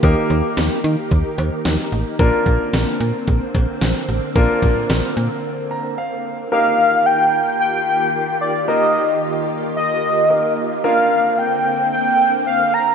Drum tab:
HH |xxxxxxxx|xxxxxxxx|xxxx----|--------|
CB |-----x--|-----x--|--------|--------|
SD |--o---o-|--o---o-|--o-----|--------|
T2 |--------|--------|-o------|--------|
BD |o---o---|oo--oo--|oo------|--------|

HH |--------|--------|
CB |--------|--------|
SD |--------|--------|
T2 |--------|--------|
BD |--------|--------|